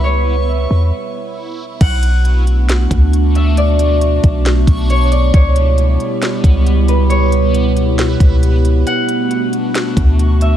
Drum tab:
CC |--------|x-------|--------|--------|
HH |--------|xxxxxxxx|xxxxxxxx|xxxxxxxx|
SD |--------|----o---|----o---|----o---|
BD |--------|o----o--|---o-o--|o----o--|

CC |--------|--------|
HH |xxxxxxxx|xxxxxxxx|
SD |----o---|----o---|
BD |-----o--|-----o--|